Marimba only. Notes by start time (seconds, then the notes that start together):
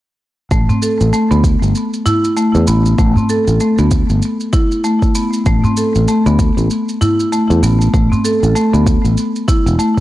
0.51 A3
0.69 C4
0.82 A4
1.13 A3
1.31 B3
2.06 E4
2.37 A3
2.67 B3
2.98 A3
3.17 C4
3.30 A4
3.61 A3
3.79 B3
4.53 E4
4.84 A3
5.15 B3
5.46 A3
5.65 C4
5.77 A4
6.08 A3
6.27 B3
7.01 E4
7.32 A3
7.63 B3
7.93 A3
8.12 C4
8.24 A4
8.56 A3
8.73 B3
9.48 E4
9.79 A3